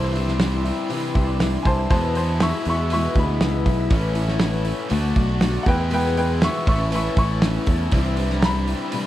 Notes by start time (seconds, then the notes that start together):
Already playing: C2 C3 E3 G3 C4 D4 E4 C5 D5 C6
0.13 G3 D4 E4, open hi-hat
0.28 snare
0.40 E3 G3 D4 E4, snare, open hi-hat
0.64 G3 D4 E4, open hi-hat
0.89 C3 E3 G3 D4 E4, open hi-hat
1.14 C2 G3 D4 E4, kick, open hi-hat
1.39 E3 G3 D4 E4, snare, open hi-hat
1.63 C2 D4 E4 C5 G#5 A5, kick, open hi-hat
1.67 G3
1.90 E2 B2 E3 G#3 B3 E4 G#4 C5 E5 A5 B5, kick, open hi-hat
2.15 E3 G#3 B3 E4 C5 A5, open hi-hat
2.40 E3 G#3 B3 E4 E5 C#6, snare, open hi-hat
2.65 E2 G#3 B3 E4 E5, open hi-hat
2.69 E3 C#6
2.90 E2 B2 E3 G#3 E5 C#6, open hi-hat
2.94 B3 E4
3.15 D2 E3 G#3 B3 E4 B5, kick, open hi-hat
3.41 C#2 E3 G#3 B3 E4, snare, open hi-hat
3.66 B1 E3 G#3 B3 E4, kick, open hi-hat
3.90 A1 A2 E3 A3 B3 C#4 E4 A4 C#5, kick, open hi-hat
4.14 B3 C#4 E4, open hi-hat
4.28 snare
4.39 E3 B3 C#4 E4, snare, open hi-hat
4.64 B3 C#4 E4, open hi-hat
4.89 D2 D3 A3 D4 F#4 D5 A5, open hi-hat
5.14 B1 A3 D4 F#4, kick, open hi-hat
5.39 D3 A3 D4 F#4, snare, open hi-hat
5.63 E2 B2 E3 G#3 B3 E4 G#4 B4 F#5 G#5, kick, open hi-hat
5.67 E4 B4 G5
5.89 E2 B2 E3 G#3 B3 G#4 B4, open hi-hat
5.94 G5
6.15 E3 G#3 B3 G#4 B4 G5, open hi-hat
6.40 E3 G#3 B3 G#4 E5 C#6, snare, open hi-hat
6.66 A1 A2 E3 A3 B3 C#4 E4 E5 A5 C#6, kick, open hi-hat
6.90 A2 E3 B3 C#4 E4, open hi-hat
6.94 E5 C#6
7.17 A1 B3 C#4 E4 C#6, kick, open hi-hat
7.42 E3 B3 C#4 E4, snare, open hi-hat
7.66 E2 B3 C#4 E4, kick, open hi-hat
7.92 C2 C3 E3 G3 C4 D4 E4 C5 E5, kick, open hi-hat
8.17 G3 D4 E4, open hi-hat
8.30 snare
8.40 E3 A#5, snare, open hi-hat
8.44 G3 D4 E4 B5
8.68 G3 D4 E4, open hi-hat
8.92 C3 E3 G3 D4 E4, open hi-hat